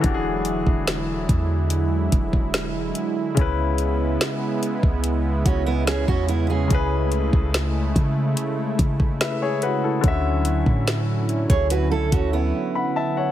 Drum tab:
HH |x-x-x-x-x-x-x-x-|x-x-x-x-x-x-x-x-|x-x-x-x-x-x-x-x-|x-x-x-xxx-x-----|
SD |----o-------o---|----o-------o---|----o-------o---|----o-----------|
BD |o--o--o---oo----|o------o--o--o--|o--o--o---oo----|o--o---o--o-----|